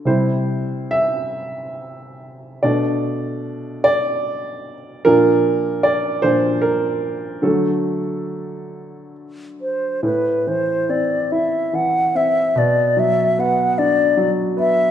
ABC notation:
X:1
M:6/8
L:1/8
Q:3/8=48
K:Ador
V:1 name="Flute"
z6 | z6 | z6 | z4 z c |
B c d e f e | d e f d z e |]
V:2 name="Upright piano"
c2 e4 | d2 z d2 z | _B2 d c B2 | A4 z2 |
z6 | z6 |]
V:3 name="Upright piano" clef=bass
[C,G,E] z4 z | [B,,A,D]6 | [_B,,=F,D]3 [B,,F,D] z2 | [D,F,A,] z4 z |
A,, E, C E E, C | B,, F, B, D F, B, |]